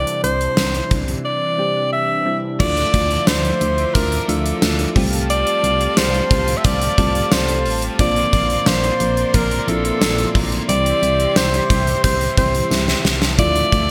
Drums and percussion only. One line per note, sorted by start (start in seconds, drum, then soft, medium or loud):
0.07 closed hi-hat medium
0.24 closed hi-hat medium
0.41 closed hi-hat soft
0.57 snare loud
0.57 tambourine medium
0.75 closed hi-hat soft
0.91 kick loud
0.91 closed hi-hat medium
1.08 closed hi-hat soft
2.60 kick loud
2.60 crash loud
2.77 closed hi-hat medium
2.94 kick medium
2.94 closed hi-hat medium
3.11 closed hi-hat medium
3.27 snare loud
3.27 tambourine medium
3.45 closed hi-hat soft
3.61 closed hi-hat medium
3.78 closed hi-hat soft
3.95 kick loud
3.95 closed hi-hat loud
4.12 closed hi-hat medium
4.29 closed hi-hat medium
4.46 closed hi-hat medium
4.62 snare loud
4.62 tambourine medium
4.79 closed hi-hat medium
4.96 kick loud
4.96 open hi-hat medium
5.13 closed hi-hat medium
5.30 closed hi-hat medium
5.47 closed hi-hat medium
5.64 closed hi-hat medium
5.81 closed hi-hat medium
5.97 snare loud
5.97 tambourine medium
6.14 closed hi-hat soft
6.31 kick loud
6.31 closed hi-hat medium
6.48 closed hi-hat soft
6.64 kick loud
6.64 closed hi-hat loud
6.82 closed hi-hat medium
6.98 kick loud
6.98 closed hi-hat medium
7.15 closed hi-hat medium
7.32 snare loud
7.32 tambourine medium
7.48 closed hi-hat medium
7.66 open hi-hat medium
7.82 closed hi-hat medium
7.99 kick loud
7.99 closed hi-hat medium
8.16 closed hi-hat medium
8.33 kick medium
8.33 closed hi-hat medium
8.50 closed hi-hat medium
8.66 snare loud
8.66 tambourine medium
8.84 closed hi-hat soft
9.00 closed hi-hat medium
9.17 closed hi-hat soft
9.34 kick loud
9.34 closed hi-hat loud
9.51 closed hi-hat medium
9.68 closed hi-hat medium
9.85 closed hi-hat medium
10.02 snare loud
10.02 tambourine medium
10.18 closed hi-hat medium
10.35 kick loud
10.35 open hi-hat medium
10.52 closed hi-hat medium
10.69 closed hi-hat medium
10.86 closed hi-hat medium
11.03 closed hi-hat medium
11.20 closed hi-hat soft
11.36 snare loud
11.36 tambourine medium
11.54 closed hi-hat medium
11.70 kick loud
11.70 closed hi-hat medium
11.87 closed hi-hat soft
12.04 kick loud
12.04 closed hi-hat loud
12.21 closed hi-hat medium
12.38 kick loud
12.38 closed hi-hat medium
12.55 closed hi-hat medium
12.71 snare medium
12.71 tambourine medium
12.88 snare medium
13.05 snare medium
13.22 snare medium
13.39 kick loud
13.39 closed hi-hat medium
13.56 closed hi-hat medium
13.72 kick medium
13.72 closed hi-hat medium